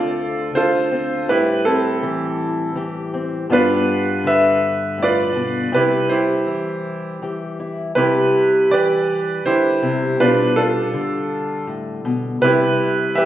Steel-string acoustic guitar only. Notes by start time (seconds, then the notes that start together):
Already playing: D2 D3 A3 C4 F4
0.54 D3 F4
0.92 C4
1.28 A2 G3
2.03 E3
2.75 E3 G4
3.14 C4
3.50 G2 B3
4.24 D3
4.98 A2
5.35 B2
5.72 C3 G3
6.47 E3
7.22 E3 G4
7.60 E4
7.95 C3 G3
8.70 E3
9.45 D3
9.82 C3
10.20 B2 G3
10.93 D3
11.67 A2
12.05 B2
12.41 C3 G3
13.15 E3